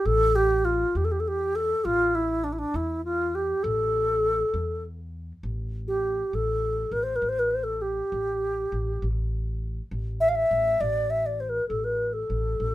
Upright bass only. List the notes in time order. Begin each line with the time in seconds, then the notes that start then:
0.05 A1
0.95 E2
1.85 A1
2.74 E2
3.64 A1
4.54 E2
5.43 A1
6.33 A1
6.91 A1
7.22 A1
8.12 A1
8.72 A1
9.02 A1
9.91 A1
10.51 A1
10.81 A1
11.70 A1
12.30 A1
12.60 A1